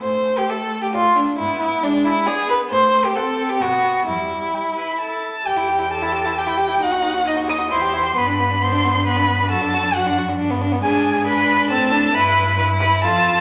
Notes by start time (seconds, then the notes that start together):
0.02 A2 A3 C5
0.38 G4
0.49 A4 E5
0.82 G4
0.94 A2 F4 D5
1.16 D4
1.38 G#2 B3 E4
1.60 E4
1.83 G#3 D4 D5
2.05 E4
2.26 B3 G#4 D5
2.50 B4
2.71 A2 A3 C5
3.05 G4
3.15 C4 A4 F#5
3.49 G4
3.60 B2 B3 F#4 A5
4.07 E2 G3 E4
4.54 G5
4.77 B4 B5
5.00 A4 A5
5.46 E2 G4 G5
5.57 E4
5.68 G4
5.79 E4
5.90 G4 A4 A5
6.02 E4
6.13 G4
6.26 E4
6.36 G4 G5
6.47 E4
6.57 G4
6.68 E4
6.81 D#2 D#4 F#4 F#5
6.92 F#4
7.02 D#4
7.14 F#4
7.26 D#4 D#5
7.36 F#4
7.49 D#4 D#5 D#6
7.58 F#4
7.70 E2 E4 C5 C6
7.82 G4
7.94 E4
8.03 G4
8.15 G2 B3 B4 B5
8.27 D4
8.40 B3
8.51 D4
8.61 B3 C5 C6
8.72 D4
8.84 B3
8.95 D4
9.05 B3 B4 B5
9.17 D4
9.28 B3
9.40 D4
9.49 F#2 F#4 A4 A5
9.62 D4
9.74 F#4
9.83 D4
9.94 F#4 F#5
10.06 D4
10.18 F#4
10.29 D4
10.38 G2 D4
10.50 B3
10.61 D4
10.72 B3
10.81 G#2 D4 G#4 G#5
11.26 D4 B4 B5
11.70 A2 C4 A4 A5
11.92 D4
12.13 G2 E4 B4 B5
12.57 E4 B4 B5
12.80 B4 B5
13.02 F2 F4 A4 A5